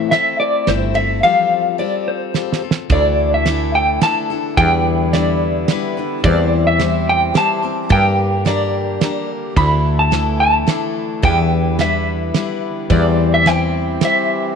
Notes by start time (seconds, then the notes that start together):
Already playing: A2 E3 A3 C4 E4 A4 E5
0.11 A3 C4 E4 A4 E5, snare, ride
0.40 D5
0.67 G1 A3 C4 E4 A4 C5, snare, ride
0.94 A3 C4 E4 A4 E5, ride
1.23 F3 G3 C4 F4 A4 F5
1.78 G3 C4 F4 A4 D5
2.08 C5
2.34 G3 C4 F4 A4, snare
2.53 snare
2.62 C4 F4 A4
2.71 snare
2.90 D2 D3 E3 A3 D4 E4 A4 D5, kick, ride
3.34 E5
3.46 A3 D4 E4 A4, snare, ride
3.75 G5
4.01 A3 D4 E4 A4 A5, snare, ride
4.30 D4 E4 A4
4.57 E2 E3 G3 B3 D4 E4 B4 G5, kick, ride
5.13 G3 D4 E4 B4 D5, snare, ride
5.68 G3 D4 E4 B4, snare, ride
5.97 D4 E4 B4
6.24 E2 E3 G3 C4 E4 G4 C5 D5, kick, ride
6.67 E5
6.79 G3 C4 E4 C5, snare, ride
7.09 G5
7.34 G3 C4 E4 C5 A5, snare, ride
7.62 C4 E4 C5
7.89 G2 D3 G3 A#3 D4 G4 A#4 G5, kick, ride
8.45 G3 D4 G4 A#4 D5, snare, ride
9.01 G3 D4 G4 A#4, snare, ride
9.56 D2 D3 E3 A3 D4 E4 A4 B5, kick, ride
9.99 A5
10.11 A3 D4 E4 A4, snare, ride
10.40 A5
10.67 A3 D4 E4 A4, snare, ride
11.22 E2 E3 G3 B3 D4 E4 B4 G5, kick, ride
11.79 G3 D4 E4 B4 E5, snare, ride
12.34 G3 D4 E4 B4, snare, ride
12.89 E2 E3 G3 C4 E4 G4 C5 D5, kick, ride
13.34 E5
13.46 G3 C4 E4 C5 G5, snare, ride
14.01 G3 C4 E4 C5 E5, snare, ride